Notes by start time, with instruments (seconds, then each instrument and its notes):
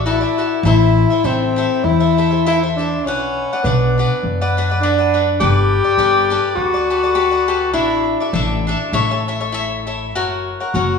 Already playing: upright bass A1
0.06 tenor saxophone E4, cavaquinho F#4 A4 D5 E5
0.21 cavaquinho A4 D5 E5
0.38 cavaquinho F#4 A4 D5 E5
0.63 upright bass A1, cavaquinho E4 A4 C5 E5, tenor saxophone E4
1.10 cavaquinho A4 C5 E5
1.24 upright bass A1, tenor saxophone C4, cavaquinho E4 A4 C5 E5
1.56 cavaquinho E4 A4 C5 E5
1.84 upright bass E2, tenor saxophone E4
2.00 cavaquinho A4 C5 E5
2.18 cavaquinho E4 A4 C5 E5
2.31 cavaquinho A4 C5 E5
2.46 cavaquinho E4 A4 C5 E5, tenor saxophone E4
2.63 cavaquinho A4 C5 E5
2.76 tenor saxophone D4, cavaquinho E4 A4 C5 E5
3.05 upright bass B1, tenor saxophone C#4, cavaquinho B4 F#5
3.53 cavaquinho B4 D5 F#5
3.63 upright bass B1, tenor saxophone B3, cavaquinho D4 B4 D5 F#5
3.98 cavaquinho D4 B4 D5 F#5
4.23 upright bass F#2
4.41 cavaquinho B4 D5 F#5
4.57 cavaquinho D4 B4 D5 F#5
4.70 cavaquinho B4 D5 F#5
4.80 tenor saxophone D4, cavaquinho D4 B4 D5 F#5
4.98 cavaquinho B4 D5 F#5
5.14 cavaquinho D4 B4 D5 F#5
5.40 upright bass G1, tenor saxophone G4, cavaquinho G4 A4 B4 D5
5.84 cavaquinho A4 B4 D5
5.98 upright bass G1, cavaquinho G4 A4 B4 D5
6.30 cavaquinho G4 A4 B4 D5
6.55 upright bass D2, tenor saxophone F#4
6.74 cavaquinho A4 B4 D5
6.90 cavaquinho G4 A4 B4 D5
7.03 cavaquinho A4 B4 D5
7.15 cavaquinho G4 A4 B4 D5
7.31 cavaquinho A4 B4 D5
7.48 cavaquinho G4 A4 B4 D5
7.73 upright bass A1, cavaquinho D4 A4 D5 E5, tenor saxophone E4
8.20 cavaquinho A4 D5 E5
8.33 upright bass A1, cavaquinho D4 A4 D5 E5
8.67 cavaquinho D4 A4 D5 E5
8.92 upright bass A1, cavaquinho E4 A4 C#5 E5
9.11 cavaquinho A4 C#5 E5
9.28 cavaquinho E4 A4 C#5 E5
9.40 cavaquinho A4 C#5 E5
9.52 cavaquinho E4 A4 C#5 E5
9.87 cavaquinho E4 A4 C#5 E5
10.15 upright bass F#1, cavaquinho F#4 A#4 C#5 F#5
10.60 cavaquinho A#4 C#5 F#5
10.74 upright bass F#1, tenor saxophone F#4, cavaquinho F#4 A#4 C#5 F#5